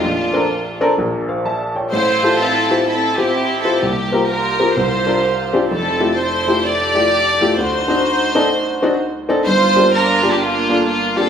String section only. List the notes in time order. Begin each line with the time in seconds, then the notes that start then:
Already playing: A3 D4 F4
1.92 E4 F4 C5
2.40 C4 E4 A4
2.87 C4 E4 A4
3.16 C4 E4 G4
3.62 A4
3.80 A#3 G4
4.27 F4 G4 A#4
4.74 F4 G4 C5
5.71 C4 E4 A4
6.17 E4 A4 C5
6.64 G4 A4 D5
7.58 D#4 F#4 C5
9.47 F4 C5
9.93 D4 F4 A#4
10.33 G4
10.40 A#3 D4 F4
10.88 F4
11.17 C4 F4 A4